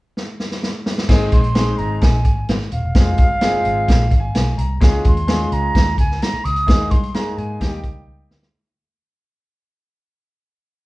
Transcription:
0.17 snare
0.40 snare
0.51 snare
0.63 snare
0.86 snare
0.98 snare
1.09 fingered electric bass G#1, grand piano G#3 C4 D#4 G#4, kick, snare, crash
1.32 fingered electric bass A#1, flute C6, kick, closed hi-hat
1.44 closed hi-hat
1.55 grand piano G#3 C4 D#4 G#4, snare, closed hi-hat
1.78 fingered electric bass G#1, flute A#5, closed hi-hat
2.01 fingered electric bass A#1, flute G#5, kick, snare, closed hi-hat
2.25 fingered electric bass G#1, kick, closed hi-hat
2.49 fingered electric bass G#1, snare, closed hi-hat
2.72 fingered electric bass D#1, flute F5, closed hi-hat
2.85 fingered electric bass E1
2.95 fingered electric bass F1, grand piano G#3 C4 F4 G#4, kick, snare, closed hi-hat
3.18 fingered electric bass G1, kick, closed hi-hat
3.41 grand piano G#3 C4 F4 G#4, snare, closed hi-hat
3.65 fingered electric bass G#1, closed hi-hat
3.88 fingered electric bass A#1, kick, snare, closed hi-hat
4.11 fingered electric bass G#1, grand piano F5, kick, closed hi-hat
4.20 grand piano G#5
4.35 fingered electric bass B1, grand piano G#5, snare, closed hi-hat
4.58 fingered electric bass C2, grand piano A#5, closed hi-hat
4.80 fingered electric bass C#2, grand piano G#3 C#4 F4 G#4, kick, snare, closed hi-hat
5.04 fingered electric bass D#2, flute C6, kick, closed hi-hat
5.17 closed hi-hat
5.27 grand piano G#3 C#4 F4 G#4, snare, closed hi-hat
5.52 fingered electric bass C#2, flute A#5, closed hi-hat
5.75 fingered electric bass D#2, kick, snare, closed hi-hat
5.98 fingered electric bass C#2, flute G#5, kick, closed hi-hat
6.11 snare
6.22 flute A#5, snare, closed hi-hat
6.33 muted fingered electric bass stroke
6.45 fingered electric bass C#2, flute D#6, closed hi-hat
6.56 closed hi-hat
6.66 fingered electric bass D#2, grand piano G#3 A#3 D#4 G#4, kick, snare, closed hi-hat
6.91 fingered electric bass G2, flute C6, kick, closed hi-hat
7.03 closed hi-hat
7.14 grand piano G#3 A#3 D#4 G#4, flute A#5, snare, closed hi-hat
7.38 fingered electric bass G#2, flute G#5, closed hi-hat
7.60 fingered electric bass D#2, grand piano G3 A#3 D#4 G4, flute G#5, kick, snare, closed hi-hat
7.72 flute G5
7.84 fingered electric bass C#2, kick, closed hi-hat
8.07 fingered electric bass C#2
8.30 fingered electric bass D2, snare
8.42 snare

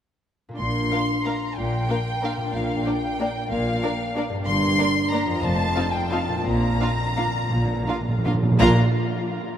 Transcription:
0.49 harp A#2 A#3
0.53 harp D4 D5
0.59 double bass section A#1, cello section A#2, timpani A#2, violin section C6
0.92 viola section A#3 D4, violin section A#4 F5
1.26 viola section A#3 D4, violin section A#4 F5 A#5
1.57 double bass section A#1, cello section A#2, violin section G5
1.89 viola section A#3 D4, violin section A#4 F5
2.23 viola section A#3 D4, violin section A#4 F5
2.37 harp A#2
2.41 harp A#3
2.46 harp D4
2.50 harp D5
2.54 double bass section A#1, cello section A#2, violin section F5
2.86 viola section A#3 D4, violin section A#4 D5 G5
3.20 viola section A#3 D4, violin section A#4 D5
3.51 double bass section A#1, cello section A#2, violin section F5
3.83 viola section A#3 D4, violin section A#4 D5
4.15 viola section A#3 D4, violin section A#4 D5
4.29 harp G2
4.34 harp A#3
4.38 harp D4
4.43 double bass section G1, harp D5
4.47 cello section G2, violin section C6
4.78 viola section A#3 D4, violin section A#4 D5
5.11 viola section A#3 D4, violin section A#4 D5 A#5
5.26 harp F2
5.31 harp C4
5.35 harp F4
5.39 timpani F2, cello section F2, harp D#5, violin section A5
5.44 double bass section F1
5.76 viola section C4 D#4, violin section F4 F5
5.93 violin section G5
6.11 viola section C4 D#4, violin section F4 F5 A5
6.28 harp A#2
6.32 harp A#3
6.37 harp F4
6.41 double bass section A#1, timpani A#2, cello section A#2, harp D5, violin section A#5
6.52 timpani A#2
6.69 timpani A#2
6.77 timpani A#2, viola section A#3 D4
6.81 timpani A#2, violin section F4 F5
6.94 timpani A#2
7.02 timpani A#2
7.11 timpani A#2
7.17 timpani A#2, viola section A#3 D4, violin section F4 F5
7.27 timpani A#2
7.35 timpani A#2
7.42 timpani A#2
7.50 double bass section A#1, timpani A#2, cello section A#2
7.58 timpani A#2
7.66 timpani A#2
7.75 timpani A#2
7.83 timpani A#2
7.87 viola section A#3 D4, violin section F4 F5
7.91 timpani A#2
8.01 timpani A#2
8.09 timpani A#2
8.18 timpani A#2
8.25 timpani A#2, viola section A#3 D4, violin section F4 F5
8.34 timpani A#2
8.43 timpani A#2
8.51 timpani A#2
8.57 double bass section A#1, harp A#2 A#3 F4, cello section A#2, timpani A#2, viola section A#3 D4, violin section F4 F5 A#5
8.62 harp D5 F5

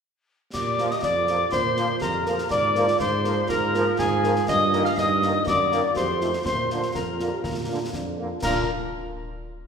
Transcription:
0.53 tuba A#2, euphonium G4, woodwind section D5, cornet D5, piccolo D6, concert bass drum, snare, crash
0.78 trombone section F3 A#3, french horn section A#3 F4 A#4, snare
0.91 woodwind section D#5, cornet D#5, piccolo D#6, snare
1.03 tuba F2, euphonium F4, woodwind section D5, cornet D5, piccolo D6, concert bass drum, snare
1.27 trombone section F3 A#3, french horn section A#3 F4 A#4, snare
1.52 tuba A#2, euphonium F4, woodwind section C5, cornet C5, piccolo C6, concert bass drum, snare
1.77 trombone section F3 A#3, french horn section A#3 F4 A#4, snare
2.01 tuba F2, euphonium G4, woodwind section A#4, cornet A#4, piccolo A#5, concert bass drum, snare
2.26 trombone section F3 A#3, french horn section A#3 F4 A#4, snare
2.38 snare
2.50 tuba G#2, euphonium F4, woodwind section D5, cornet D5, piccolo D6, concert bass drum, snare
2.75 trombone section F3 A#3, french horn section A#3 F4 A#4, snare
2.88 snare
2.99 tuba G#2, woodwind section C5, cornet C5, piccolo C6, concert bass drum, snare
3.24 trombone section F3 A#3, french horn section A#3 F4 A#4, snare
3.49 tuba G#2, euphonium F4, woodwind section A#4, cornet A#4, piccolo A#5, concert bass drum, snare
3.74 trombone section F3 A#3, french horn section A#3 F4 A#4, snare
3.99 tuba G#2, cornet G#4, woodwind section G#4, piccolo G#5, concert bass drum, snare
4.24 trombone section F3 A#3, french horn section A#3 F4 A#4, snare
4.36 snare
4.48 tuba G2, woodwind section D#5, cornet D#5, piccolo D#6, concert bass drum, snare, crash
4.73 trombone section D#3 A#3, french horn section A#3 D#4 A#4, snare
4.84 woodwind section F5, cornet F5, piccolo F6, snare
4.97 tuba G2, euphonium D#4, woodwind section D#5, cornet D#5, piccolo D#6, concert bass drum, snare
5.22 trombone section D#3 A#3, french horn section A#3 D#4 A#4, snare
5.46 tuba F#2, euphonium F#4, woodwind section D5, cornet D5, piccolo D6, concert bass drum, snare
5.72 trombone section D#3 A#3, french horn section A#3 D#4 A#4, snare
5.96 tuba F2, euphonium G4, cornet C5, woodwind section C5, piccolo C6, concert bass drum, snare
6.21 trombone section D#3 A3, french horn section A3 D#4 F4, snare
6.33 snare
6.45 tuba A#2, euphonium F4, woodwind section C5, cornet C5, piccolo C6, concert bass drum, snare
6.70 trombone section D3 A#3, french horn section A#3 D4 F4, snare
6.83 snare
6.94 tuba F2, euphonium F4, woodwind section A#4, cornet A#4, piccolo A#5, concert bass drum, snare
7.20 trombone section D3 A#3, french horn section A#3 D4 F4, snare
7.32 euphonium G4
7.44 tuba A#2, euphonium F4, concert bass drum, snare
7.68 trombone section D3 A#3, french horn section A#3 D4 F4
7.93 tuba F2, euphonium D4, concert bass drum, snare
8.17 trombone section D3 A#3, french horn section A#3 D4 F4
8.42 tuba A#2, trombone section D3 A#3, french horn section A#3 D4 F4, woodwind section A#4, cornet A#4, piccolo A#5, concert bass drum, snare, crash

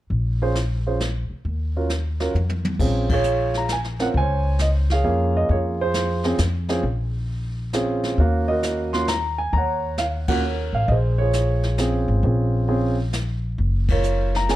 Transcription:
0.10 upright bass A#1, brush sweep, kick
0.42 grand piano C#4 F4 G#4 C5
0.55 snare, hi-hat pedal
0.87 grand piano C#4 F4 G#4 C5
1.00 snare, hi-hat pedal
1.30 muted upright bass stroke
1.45 upright bass D#2, brush sweep, kick
1.76 grand piano C#4 F4 F#4 A#4
1.89 snare, hi-hat pedal
2.20 grand piano C#4 F4 F#4 A#4, snare
2.34 upright bass F2, high tom
2.49 high tom
2.65 high tom
2.79 upright bass A#1, grand piano C4 C#4 F4 G#4, brush sweep, kick, crash
3.09 grand piano F4 G#4, kick, ride
3.14 grand piano C#5
3.24 hi-hat pedal
3.54 grand piano A#5, snare
3.69 grand piano G#5, snare, hi-hat pedal
3.84 snare
3.99 grand piano C4 C#4 F4 A#4 F#5, snare
4.14 upright bass C#2, grand piano C5 G#5, brush sweep, kick
4.18 grand piano C#5
4.59 grand piano D#5, snare, hi-hat pedal
4.90 grand piano G#4 C#5 F5, snare
5.04 upright bass F2, grand piano A#3 C#4 F4 G#4
5.37 grand piano D#5
5.49 upright bass F2, grand piano F4 G#4 C#5, brush sweep, kick
5.81 grand piano F4 G#4 C5
5.94 snare, hi-hat pedal
6.24 grand piano C4 C#4 F4 G#4, snare
6.38 upright bass F2, snare, hi-hat pedal
6.69 grand piano C4 C#4 F4 G#4, snare
6.83 upright bass A#1, brush sweep, kick
7.73 grand piano C4 C#4 F4 G#4, snare, hi-hat pedal
8.03 snare
8.18 upright bass D#2, grand piano A#3 C#4 F#4 F5, brush sweep, kick
8.48 grand piano F#4 A#4 D#5
8.63 snare, hi-hat pedal
8.93 grand piano A#3 C#4 F4 F#4 C6, snare
9.08 grand piano A#5, snare, hi-hat pedal
9.38 grand piano G#5
9.53 upright bass D#2, grand piano A#5, brush sweep, kick
9.57 grand piano C#5 F#5
9.98 grand piano F5, snare, hi-hat pedal
10.28 grand piano A#3 C#4 F4 F#4 F#5, kick, ride
10.32 grand piano A#4 C#5
10.73 upright bass A1, grand piano F5
10.88 upright bass A#1, grand piano G#4 C5 D#5, brush sweep, kick
11.18 grand piano F4 G#4 C#5
11.33 snare, hi-hat pedal
11.63 snare
11.78 grand piano C4 C#4 F4 G#4, snare, hi-hat pedal
12.08 upright bass G#1
12.23 upright bass A#1, grand piano C4 C#4 F4 G#4, brush sweep, kick
12.68 grand piano C4 C#4 F4 G#4
13.13 snare, hi-hat pedal
13.58 upright bass F#1, brush sweep, kick
13.88 grand piano F4 A#4 C#5, kick, ride
14.03 hi-hat pedal
14.35 grand piano A#5, snare
14.49 grand piano A#3 C#4 F4 G#4 G#5, snare, hi-hat pedal

